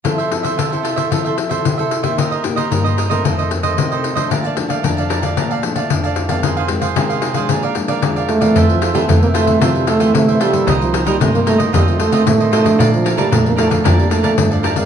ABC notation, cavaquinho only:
X:1
M:4/4
L:1/16
Q:1/4=113
K:F
V:1 name="Cavaquinho"
[FAce] [Ace] z [Ace] [FAce] [Ace] [FAce] [Ace] [FAce] [Ace] z [Ace]2 [Ace]2 [Ace] | [_EBc_e] [Bce] z [Bce] [EBce] [Bce] [EBce] [Bce] [FAce] [Ace] z [Ace]2 [Ace]2 [Ace] | [Bdfa] [dfa] z [dfa] [Bdfa] [dfa] [Bdfa] [dfa] [Bdfa] [dfa] z [dfa]2 [dfa]2 [dfa] | [_E_Acf] [Acf] z [Acf] [EAcf] [Acf] [EAcf] [Acf] [ABdf] [Bdf] z [Bdf]2 [Bdf]2 [Bdf] |
[FAce]2 [FAce] [FAce] [FAce]2 [FAce] [Ace] [FAce]2 [FAce] [FAce] z [Ace] [FAce] [Ace] | [_EBc_e]2 [EBce] [EBce] [EBce]2 [EBce] [Bce] [FAce]2 [FAce] [FAce] z [Ace] [FAce] [Ace] | [Bdfa]2 [Bdfa] [Bdfa] [Bdfa]2 [Bdfa] [dfa] [Bdfa]2 [Bdfa] [Bdfa] z [dfa] [Bdfa] [dfa] |]